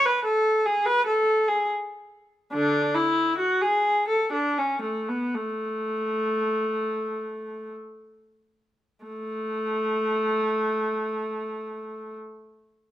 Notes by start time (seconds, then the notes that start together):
0.05 B4
0.24 A4
0.66 G#4
0.86 B4
1.06 A4
1.48 G#4
2.52 D3 D4
2.95 E4
3.38 F#4
3.61 G#4
4.08 A4
4.33 D4
4.58 C#4
4.82 A3
5.09 B3
5.35 A3
9.05 A3